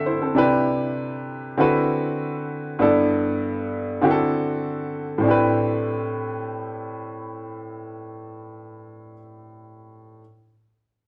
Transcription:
Already playing: D3 C4 E4 F#4 A4 E5
0.06 E4 C5
0.22 C4 A4
0.35 C3 D4 E4 G4 B4
1.57 D3 C4 E4 F#4 A4 B4
2.79 G2 B3 D4 E4 A4
4.01 D3 C4 E4 F#4 G4
4.11 A4
5.18 A2 C4
5.23 D4 E4
5.28 G4 B4

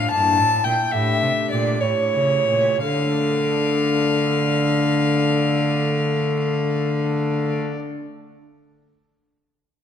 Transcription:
Already playing: A2 F4 F5
0.10 A#3 D4 E4 A5
0.14 G2
0.40 A2
0.64 A#2 G5
0.89 A3 D4 G4 E5
0.94 A2 E5
1.21 C3
1.51 A#2 D5
1.78 A3 E4 G4 C#5
1.82 A2
2.14 C#3
2.48 A#2
2.82 D3 A4 F5
2.89 A3
2.96 D4
3.03 A4
3.10 D5

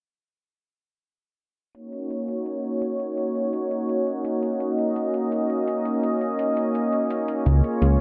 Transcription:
1.74 A#3 C#4 D#4 F#4 C#5, closed hi-hat
1.93 closed hi-hat
2.10 closed hi-hat
2.28 closed hi-hat
2.46 closed hi-hat
2.64 closed hi-hat
2.82 closed hi-hat
3.00 closed hi-hat
3.17 closed hi-hat
3.35 closed hi-hat
3.53 closed hi-hat
3.71 closed hi-hat
3.89 closed hi-hat
4.07 closed hi-hat
4.25 closed hi-hat
4.43 closed hi-hat
4.60 D#5, closed hi-hat
4.78 closed hi-hat
4.96 closed hi-hat
5.14 closed hi-hat
5.32 closed hi-hat
5.50 closed hi-hat
5.68 closed hi-hat
5.85 closed hi-hat
6.03 closed hi-hat
6.21 closed hi-hat
6.39 closed hi-hat
6.57 closed hi-hat
6.75 closed hi-hat
6.93 closed hi-hat
7.10 closed hi-hat
7.28 closed hi-hat
7.46 C#2 F4 G#4 C#5, closed hi-hat
7.64 closed hi-hat
7.82 C#2, closed hi-hat

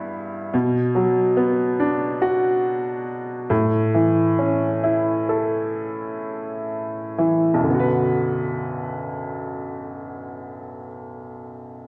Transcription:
Already playing: G2 G3 B3 E4
0.54 B2
0.95 F#3
1.37 B3
1.80 D4
2.22 F#4
3.50 A2
3.94 E3
4.39 C#4
4.84 E4
5.29 A4
7.18 E3
7.54 B1
7.59 F#2
7.64 D3
7.69 B3
7.74 F#4
7.79 B4

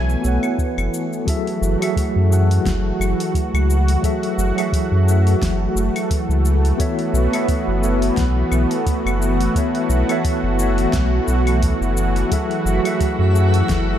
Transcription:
Already playing: B1 E3 A3 B3 F#4 A4 C#5 E5 G#5
0.09 cabasa
0.20 B1 B3 F#4 A4, cabasa
0.26 C#5 F#5
0.43 cabasa, claves
0.58 kick, cabasa
0.77 F#1, cabasa, claves
0.94 cabasa
1.13 cabasa
1.26 E3 F#3 A3 F#4 G#4 A4 E5, kick, open hi-hat, cabasa
1.47 open hi-hat
1.61 F#1, cabasa
1.79 F#3 F#4 G#4 A4 E5, open hi-hat, cabasa, claves
1.96 kick, open hi-hat, cabasa
2.16 F#2
2.29 F#3 F#4 G#4 A4, cabasa
2.33 F#5
2.51 open hi-hat, cabasa
2.65 F#1, kick, snare, open hi-hat, cabasa
3.00 F#1, cabasa, claves
3.20 open hi-hat, cabasa
3.34 kick, open hi-hat, cabasa
3.54 C#2, cabasa, claves
3.70 cabasa
3.88 open hi-hat, cabasa
4.02 F#3 F#4 G#4 A4 E5, kick, open hi-hat, cabasa
4.23 open hi-hat
4.38 F#1, cabasa
4.56 F#3 F#4 G#4 A4 E5, open hi-hat, cabasa, claves
4.73 kick, open hi-hat, cabasa
4.92 F#2
5.04 F#3 F#4
5.08 G#4 A4 E5, cabasa
5.27 open hi-hat, cabasa
5.41 F#1, kick, snare, open hi-hat, cabasa
5.75 F#1, cabasa
5.96 open hi-hat, cabasa, claves
6.11 kick, open hi-hat, cabasa
6.29 C#2, cabasa
6.45 cabasa
6.65 open hi-hat, cabasa
6.78 B3 F#4 A4 C#5 E5, kick, open hi-hat, cabasa
6.99 open hi-hat
7.13 B1, cabasa
7.31 B3 F#4 A4 C#5, open hi-hat, cabasa, claves
7.35 E5
7.48 kick, open hi-hat, cabasa
7.68 F#1
7.81 B3 F#4 A4 C#5 F#5, cabasa
8.02 open hi-hat, cabasa
8.17 B1, kick, snare, open hi-hat, cabasa
8.51 B1, cabasa, claves
8.71 open hi-hat, cabasa
8.86 kick, open hi-hat, cabasa
9.05 F#1, cabasa, claves
9.22 cabasa
9.40 open hi-hat, cabasa
9.54 B3 F#4 A4 C#5, kick, open hi-hat, cabasa
9.58 E5
9.75 open hi-hat
9.89 B1, cabasa
10.07 B3 F#4 A4 C#5, open hi-hat, cabasa, claves
10.12 E5
10.24 kick, open hi-hat, cabasa
10.43 F#1
10.55 B3 F#4, cabasa
10.59 A4 C#5 E5
10.78 open hi-hat, cabasa
10.93 B1, kick, snare, open hi-hat, cabasa
11.27 B1, cabasa
11.47 open hi-hat, cabasa, claves
11.62 kick, open hi-hat, cabasa
11.81 F#1, cabasa
11.97 cabasa
12.16 open hi-hat, cabasa
12.29 F#3 E4 F#4 G#4 A4 E5, kick, open hi-hat, cabasa
12.51 open hi-hat
12.65 F#1, cabasa
12.83 F#3 F#4 G#4 A4 E5, open hi-hat, cabasa, claves
13.00 kick, open hi-hat, cabasa
13.19 F#2
13.33 F#3 F#4 G#4 A4 F#5, cabasa
13.54 open hi-hat, cabasa
13.69 F#1, kick, snare, open hi-hat, cabasa

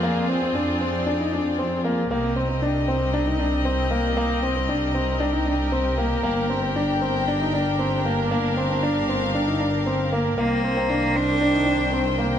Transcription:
Already playing: F2 C4 F4 G#4
0.03 A#3 D5
0.29 C4
0.42 C4
0.55 D4
0.81 C4
1.06 D4
1.20 D#4
1.33 D4
1.59 C4
1.84 A#3
2.10 C2 A#3 C4 G4 A#4 D#5
2.36 C4
2.49 C4
2.62 D4
2.88 C4
3.14 D4
3.26 D#4
3.39 D4
3.65 C4
3.91 A#3
4.17 A#3
4.43 C4
4.56 C4
4.69 D4
4.94 C4
5.20 D4
5.33 D#4
5.46 D4
5.72 C4
5.98 A#3
6.23 G1 A#3 D4 G5
6.50 C4
6.63 C4
6.76 D4
7.01 C4
7.28 D4
7.41 D#4
7.54 D4
7.79 C4
8.05 A#3
8.30 A#3 F5
8.57 C4
8.70 C4
8.83 D4
9.09 C4
9.35 D4
9.48 D#4
9.60 D4
9.86 C4
10.12 A#3
10.37 C2 D#3 A#3 C5 G5
10.64 C4
10.77 C4
10.90 D4
11.15 C4 D4
11.41 D4
11.54 D#4
11.67 D4
11.93 C4
12.18 A#3

